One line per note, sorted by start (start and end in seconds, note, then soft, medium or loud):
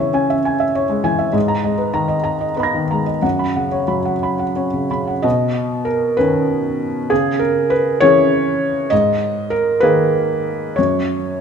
0.00 1.31 C#3 soft
0.00 0.33 E3 soft
0.00 0.24 C#5 soft
0.00 0.30 E5 soft
0.00 0.14 G#5 soft
0.13 0.63 C#4 soft
0.13 0.39 G#5 soft
0.30 0.54 E5 soft
0.45 0.70 G#5 soft
0.60 0.84 E5 soft
0.75 0.99 C#5 soft
0.89 1.14 G#3 soft
1.04 1.34 E3 soft
1.04 1.28 G#5 medium
1.19 1.34 E5 soft
1.32 3.19 G#2 medium
1.32 1.57 D#5 soft
1.48 1.73 A#5 soft
1.64 2.14 G#3 soft
1.64 1.89 D#5 soft
1.78 2.04 B4 soft
1.94 2.45 D#3 soft
1.94 2.19 A#5 soft
2.08 2.35 D#5 soft
2.24 2.51 A#5 soft
2.41 2.56 D#5 soft
2.57 3.10 B3 soft
2.57 2.83 B4 soft
2.57 3.04 D#5 soft
2.57 3.20 B5 soft
2.63 3.22 A#6 soft
2.74 3.00 D#3 soft
2.91 3.24 G#3 soft
2.91 3.17 A#5 soft
3.06 3.23 D#5 soft
3.22 5.20 F#2 soft
3.22 3.49 F#5 soft
3.39 3.66 B5 soft
3.56 4.10 C#3 soft
3.56 3.83 F#5 soft
3.72 3.99 C#5 soft
3.88 4.42 F#3 soft
3.88 4.16 B5 soft
4.05 4.33 F#5 soft
4.23 4.50 B5 soft
4.39 4.67 F#5 soft
4.56 5.11 C#4 soft
4.56 4.84 C#5 soft
4.73 4.89 C#3 soft
4.91 5.24 C#3 soft
4.91 5.18 B5 soft
5.07 5.24 F#5 soft
5.22 6.15 B2 soft
5.22 5.85 D#5 medium
5.85 6.17 A#4 medium
6.17 7.07 D#3 soft
6.17 7.07 C#4 soft
6.17 7.10 B4 medium
7.10 7.98 C#3 soft
7.10 7.40 G#4 medium
7.39 7.70 A#4 medium
7.70 8.00 B4 medium
8.00 8.88 E3 soft
8.00 8.88 C#4 soft
8.00 8.89 G#4 soft
8.00 8.91 C#5 medium
8.90 9.80 G#2 medium
8.90 9.51 D#5 medium
9.50 9.82 A#4 medium
9.80 10.74 D#3 soft
9.80 10.74 A#3 soft
9.80 10.74 G#4 soft
9.80 10.77 B4 medium
10.76 11.41 F#2 soft
10.76 11.41 C#5 medium